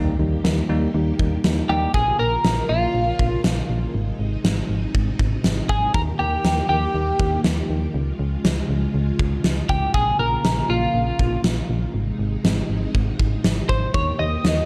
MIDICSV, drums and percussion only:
0, 0, Header, 1, 2, 480
1, 0, Start_track
1, 0, Key_signature, -4, "major"
1, 0, Tempo, 500000
1, 1865, Time_signature, 4, 2, 24, 8
1, 14069, End_track
2, 0, Start_track
2, 0, Title_t, "Drums"
2, 430, Note_on_c, 9, 38, 114
2, 526, Note_off_c, 9, 38, 0
2, 1147, Note_on_c, 9, 36, 83
2, 1243, Note_off_c, 9, 36, 0
2, 1385, Note_on_c, 9, 38, 117
2, 1481, Note_off_c, 9, 38, 0
2, 1865, Note_on_c, 9, 36, 97
2, 1961, Note_off_c, 9, 36, 0
2, 2348, Note_on_c, 9, 38, 111
2, 2444, Note_off_c, 9, 38, 0
2, 3066, Note_on_c, 9, 36, 86
2, 3162, Note_off_c, 9, 36, 0
2, 3305, Note_on_c, 9, 38, 114
2, 3401, Note_off_c, 9, 38, 0
2, 4269, Note_on_c, 9, 38, 115
2, 4365, Note_off_c, 9, 38, 0
2, 4748, Note_on_c, 9, 36, 87
2, 4844, Note_off_c, 9, 36, 0
2, 4987, Note_on_c, 9, 36, 88
2, 5083, Note_off_c, 9, 36, 0
2, 5225, Note_on_c, 9, 38, 113
2, 5321, Note_off_c, 9, 38, 0
2, 5466, Note_on_c, 9, 36, 84
2, 5562, Note_off_c, 9, 36, 0
2, 5706, Note_on_c, 9, 36, 103
2, 5802, Note_off_c, 9, 36, 0
2, 6188, Note_on_c, 9, 38, 111
2, 6284, Note_off_c, 9, 38, 0
2, 6907, Note_on_c, 9, 36, 86
2, 7003, Note_off_c, 9, 36, 0
2, 7146, Note_on_c, 9, 38, 118
2, 7242, Note_off_c, 9, 38, 0
2, 8109, Note_on_c, 9, 38, 117
2, 8205, Note_off_c, 9, 38, 0
2, 8826, Note_on_c, 9, 36, 87
2, 8922, Note_off_c, 9, 36, 0
2, 9065, Note_on_c, 9, 38, 115
2, 9161, Note_off_c, 9, 38, 0
2, 9305, Note_on_c, 9, 36, 86
2, 9401, Note_off_c, 9, 36, 0
2, 9545, Note_on_c, 9, 36, 103
2, 9641, Note_off_c, 9, 36, 0
2, 10028, Note_on_c, 9, 38, 112
2, 10124, Note_off_c, 9, 38, 0
2, 10746, Note_on_c, 9, 36, 82
2, 10842, Note_off_c, 9, 36, 0
2, 10985, Note_on_c, 9, 38, 113
2, 11081, Note_off_c, 9, 38, 0
2, 11949, Note_on_c, 9, 38, 116
2, 12045, Note_off_c, 9, 38, 0
2, 12429, Note_on_c, 9, 36, 85
2, 12525, Note_off_c, 9, 36, 0
2, 12667, Note_on_c, 9, 36, 83
2, 12763, Note_off_c, 9, 36, 0
2, 12907, Note_on_c, 9, 38, 118
2, 13003, Note_off_c, 9, 38, 0
2, 13146, Note_on_c, 9, 36, 86
2, 13242, Note_off_c, 9, 36, 0
2, 13386, Note_on_c, 9, 36, 104
2, 13482, Note_off_c, 9, 36, 0
2, 13869, Note_on_c, 9, 38, 112
2, 13965, Note_off_c, 9, 38, 0
2, 14069, End_track
0, 0, End_of_file